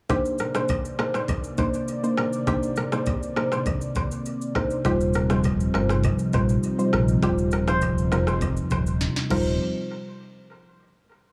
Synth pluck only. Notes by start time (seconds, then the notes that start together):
0.09 A#3 D4 D#4 C5
0.55 A#3 D4 D#4 C5
0.98 A#3 D4 D#4 C5
1.58 A#3 D4 D#4 C5
2.03 A#3 D4 D#4 C5
2.47 A#3 D4 D#4 C5
2.92 A#3 D4 D#4 C5
3.36 A#3 D4 D#4 C5
4.55 A#3 D4 D#4 C5
4.85 G3 D#4 F4 C5
5.30 G3 D#4 F4 C5
5.74 G3 D#4 F4 C5
6.33 G3 D#4 F4 C5
6.78 G3 D#4 F4 C5
7.22 G3 D#4 F4 C5
7.67 G3 D#4 F4 C5
8.11 G3 D#4 F4 C5
9.30 G3 D#4 F4 C5